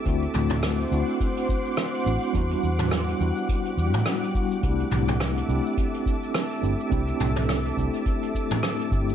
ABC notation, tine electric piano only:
X:1
M:4/4
L:1/8
Q:"Swing 16ths" 1/4=105
K:Clyd
V:1 name="Tine electric piano"
[A,CDEF]3 [A,CDEF]4 [A,CDEF] | [G,B,DEF]3 [G,B,DEF]4 [G,B,DEF] | [A,CDEG]3 [A,CDEG]4 [A,CDEG] | [A,CDEG]3 [A,CDEG]4 [A,CDEG] |]